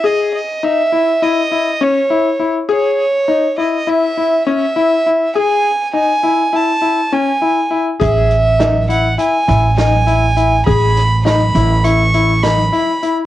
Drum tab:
HH |---------|---------|---------|xxxxxxxxx|
SD |---------|---------|---------|--o--oo--|
BD |---------|---------|---------|o--------|

HH |xxxxxxxxx|
SD |-ooo--o--|
BD |o--------|